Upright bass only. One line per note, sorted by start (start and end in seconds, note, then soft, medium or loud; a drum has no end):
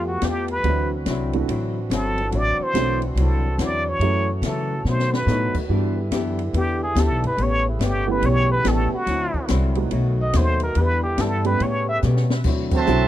0.00 0.21 F2 medium
0.22 0.63 E2 loud
0.64 1.05 D2 medium
1.06 1.47 C2 medium
1.48 1.89 A1 medium
1.90 2.31 G1 medium
2.32 2.58 A1 medium
2.58 muted upright bass stroke soft
2.74 3.15 B1 medium
3.15 3.57 C2 medium
3.58 3.99 E2 medium
3.99 4.41 F#2 medium
4.42 4.84 C#3 loud
4.85 5.26 B2 medium
5.27 5.53 A2 loud
5.55 muted upright bass stroke soft
5.69 6.11 G2 medium
6.11 6.53 F#2 medium
6.53 6.95 E2 medium
6.95 7.10 D2 loud
7.10 7.23 B1 medium
7.24 7.37 G1 medium
7.37 7.79 A1 medium
7.79 8.21 G1 medium
8.22 8.63 B1 loud
8.64 8.90 A1 medium
8.92 muted upright bass stroke soft
9.07 9.32 D2 medium
9.34 muted upright bass stroke soft
9.50 9.91 C2 loud
9.91 10.33 B1 medium
10.33 10.75 D#2 loud
10.76 11.17 E2 medium
11.18 11.59 G2 loud
11.60 12.01 A2 medium
12.03 12.44 B2 loud
12.44 12.85 D2 medium
12.87 13.08 B1 loud